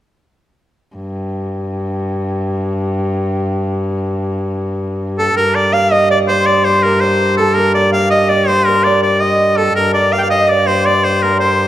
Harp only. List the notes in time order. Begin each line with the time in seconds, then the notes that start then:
5.19 A4
5.37 A#4
5.73 F5
5.92 D#5
6.10 D5
6.29 C5
6.48 D5
6.66 C5
6.85 A#4
7.03 C5
7.40 A4
7.58 A#4
7.76 D5
7.94 F5
8.13 D#5
8.31 D5
8.49 C5
8.68 A#4
8.86 D5
9.22 D#5
9.59 A4
9.78 A#4
9.96 D5
10.15 F5
10.23 F5
10.32 D#5
10.50 D5
10.68 C5
10.87 D5
11.05 C5
11.24 A#4
11.35 D5
11.41 C5